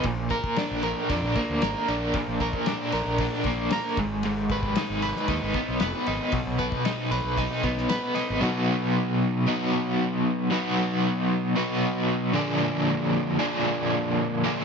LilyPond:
<<
  \new Staff \with { instrumentName = "Overdriven electric guitar" } { \time 4/4 \tempo 4 = 115 bes,8 bes'8 d'8 bes'8 d'8 bes8 bes'8 d'8 | bes,8 bes'8 d'8 bes'8 d'8 bes8 bes'8 aes,8 | aes,8 ces''8 ees'8 ces''8 ees'8 ces'8 ces''8 ees'8 | b,8 b'8 dis'8 b'8 dis'8 b8 b'8 dis'8 |
<b, fis b dis' fis'>2 <b, fis b dis' fis'>2 | <b, fis b dis' fis'>2 <b, fis b dis' fis'>4. <bes, d f bes d' aes'>8~ | <bes, d f bes d' aes'>4. <bes, d f bes d' aes'>2 <bes, d f bes d' aes'>8 | }
  \new Staff \with { instrumentName = "Fingered electric bass" } { \clef bass \time 4/4 bes,,8 r8. bes,,8 r16 f,16 bes,,16 r16 d,16 aes,,16 r16 bes,,8 | r16 bes,,8 r8. bes,,16 bes,,8 r16 bes,,8 r8 aes,,8~ | aes,,4~ aes,,16 aes,,8 r16 ees,16 aes,,16 r16 ces,16 f,,16 r16 aes,,16 r16 | b,,16 b,,8 r8. b,,16 b,,8 r16 b,,8 r8. aes,,16 |
r1 | r1 | r1 | }
  \new DrumStaff \with { instrumentName = "Drums" } \drummode { \time 4/4 <bd cymr>8 <bd cymr>16 bd16 <cymr sn>8 cymr8 <bd cymr>8 <bd cymr>8 <cymr sn>8 cymr8 | <bd cymr>8 <bd cymr>16 bd16 <cymr sn>8 cymr8 <bd cymr>8 <bd cymr>8 <cymr sn>8 <bd cymr>8 | cymr8 <bd cymr>16 bd16 <cymr sn>8 cymr16 sn16 <bd cymr>8 <bd cymr>8 <cymr sn>8 cymr8 | <bd cymr>8 <bd cymr>16 bd16 <cymr sn>8 cymr8 <bd cymr>8 <bd cymr>16 sn16 <cymr sn>8 <cymr sn>8 |
r4 r4 r4 r4 | r4 r4 r4 r4 | r4 r4 r4 r4 | }
>>